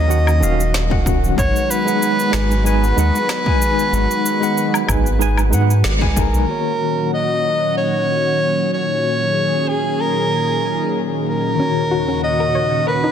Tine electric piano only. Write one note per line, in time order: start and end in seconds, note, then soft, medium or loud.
0.08 0.28 D#3 loud
0.08 0.29 C#4 medium
0.08 0.29 F#4 medium
0.08 0.30 F#5 loud
0.40 0.60 D#3 medium
0.40 0.61 C#4 medium
0.40 0.61 F#4 medium
0.40 0.62 F5 loud
0.89 1.33 D#3 medium
0.89 1.34 C#4 medium
0.89 1.34 F#4 medium
0.89 1.35 F#5 loud
1.36 1.82 G#3 medium
1.36 1.82 D#4 medium
1.36 1.83 B4 medium
1.36 1.83 F#5 medium
1.85 2.29 G#3 medium
1.85 2.30 D#4 medium
1.85 2.30 B4 medium
1.85 2.31 F#5 medium
2.31 2.52 G#3 medium
2.31 2.52 D#4 medium
2.31 2.53 B4 medium
2.31 2.53 G#5 medium
2.64 2.84 G#3 medium
2.64 2.85 D#4 medium
2.64 2.85 B4 medium
2.64 2.85 G#5 loud
2.96 3.16 G#3 loud
2.96 3.17 D#4 medium
2.96 3.17 B4 medium
2.96 3.18 F#5 loud
3.45 3.89 G#3 medium
3.45 3.89 D#4 medium
3.45 3.90 B4 medium
3.45 3.90 G#5 loud
3.91 4.37 G#3 medium
3.91 4.38 D#4 medium
3.91 4.38 B4 medium
3.91 4.39 F#5 medium
4.40 4.84 G#3 medium
4.40 4.85 D#4 medium
4.40 4.85 B4 medium
4.40 4.86 F#5 medium
4.87 5.07 G#3 medium
4.87 5.08 D#4 medium
4.87 5.08 B4 medium
4.87 5.09 G#5 medium
5.19 5.39 G#3 medium
5.19 5.40 D#4 medium
5.19 5.40 B4 medium
5.19 5.41 G#5 loud
5.50 5.71 G#3 medium
5.50 5.71 D#4 medium
5.50 5.72 B4 medium
5.50 5.73 F#5 loud
5.99 6.44 G#3 medium
5.99 6.44 D#4 medium
5.99 6.45 B4 medium
5.99 6.45 G#5 loud
6.45 11.54 D#3 medium
6.45 11.55 A#3 medium
6.45 11.56 F#4 medium
6.51 11.57 C#5 medium
11.56 13.12 A#2 medium
11.56 13.12 D#3 medium
11.60 13.12 F#4 medium
11.60 13.12 C#5 medium